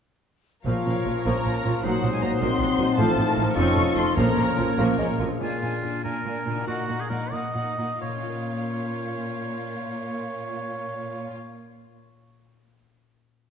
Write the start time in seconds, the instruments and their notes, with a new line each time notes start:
0.65 double bass section A#1, cello section A#2, harp A#2, french horn section F3, viola section F3 A#3, bassoon F3, clarinet F4, violin section A#4 C#5 F5, oboe A#4, flute section C#6
0.85 double bass section A#1, cello section A#2, viola section F3 C#4, harp C#4
1.05 double bass section A#1, cello section A#2, viola section F3 F4, harp C#5
1.25 double bass section A#1, cello section A#2, viola section F3 A#3, french horn section A#3, harp F4, violin section A#5
1.45 double bass section A#1, cello section A#2, viola section F3 C#4, harp F5
1.64 double bass section A#1, cello section A#2, viola section F3 F4, harp C#5
1.83 double bass section A#1, cello section A#2, harp A#2, french horn section F#3, bassoon F#3, viola section F#3 A#3, clarinet D#4, violin section F#4 C5 F#5, oboe C5, flute section D#6
2.03 double bass section A#1, cello section A#2, viola section F#3 C4, harp D#4
2.12 french horn section G#3, violin section G#5
2.21 double bass section A#1, cello section A#2, viola section F#3 D#4, french horn section A#3, harp C5, violin section A#5
2.40 double bass section A#1, cello section A#2, viola section F#3 A#3, french horn section C4, harp D#5, violin section C6
2.59 double bass section A#1, cello section A#2, viola section F#3 C4, harp F#5
2.77 double bass section A#1, cello section A#2, viola section F#3 D#4, harp D#5
2.97 double bass section A1, cello section A2, harp A2, bassoon F3, viola section F3 A3, french horn section A3, clarinet D#4, violin section A4 A5, oboe C5, flute section F6
3.17 double bass section A1, cello section A2, viola section F3 C4, harp D#4
3.27 oboe A#4
3.36 double bass section A1, cello section A2, viola section F3 D#4, harp F4 C5
3.56 double bass section F1, cello section F2, harp F2, bassoon F3, viola section F3 C4, french horn section C#4, clarinet D#4, oboe A4, violin section D#5 C#6, flute section F6
3.76 double bass section F1, cello section F2, viola section F3 D#4, harp D#4
3.96 double bass section F1, cello section F2, viola section F3 F4, french horn section C4, harp F4 A4, violin section C6
4.16 double bass section A#1, timpani A#2, cello section A#2, harp A#2, bassoon F3, viola section F3 A#3, french horn section A#3, clarinet C#4, violin section A#4 C#5 A#5, oboe A#4, flute section F6
4.37 double bass section A#1, cello section A#2, viola section F3 C#4, harp C#4
4.58 double bass section A#1, cello section A#2, viola section F3 F4, harp A#4
4.78 double bass section A#1, cello section A#2, viola section F3 A#3, bassoon A#3, harp C#5
4.99 double bass section A#1, cello section A#2, viola section F3 C#4, bassoon G#3, harp F5
5.19 double bass section A#1, cello section A#2, harp A#2 C#5, viola section F3 F4, bassoon A#3
5.27 harp D4
5.32 harp G#4
5.37 cello section A#2, oboe F4, harp A#4
5.41 viola section A#3, violin section D4 G#5
5.62 cello section A#2, viola section A#3, violin section D4 G#5
5.83 cello section A#2, viola section A#3, violin section D4 G#5
6.04 cello section A#2, viola section A#3, violin section D4 G#5, oboe A#4
6.26 cello section A#2, viola section A#3, violin section D4 G#5
6.46 cello section A#2, harp A#2, viola section A#3, violin section D4 G#5
6.54 harp D#4
6.59 harp F#4
6.63 cello section A#2, harp A#4
6.67 viola section A#3, violin section D#4 F#5, oboe F#4
6.88 cello section A#2, viola section A#3, violin section D#4 F#5
7.00 oboe G#4
7.10 cello section A#2, viola section A#3, violin section D#4 F#5, oboe A#4
7.32 cello section A#2, viola section A#3, violin section D#4 F#5, oboe D#5
7.55 cello section A#2, viola section A#3, violin section D#4 F#5
7.79 cello section A#2, viola section A#3, violin section D#4 F#5
8.01 cello section A#2, harp A#2, viola section A#3, violin section F4 F5, oboe C#5
8.09 harp A#3
8.16 harp C#4
8.22 harp F4
8.30 harp A#4
8.36 harp F5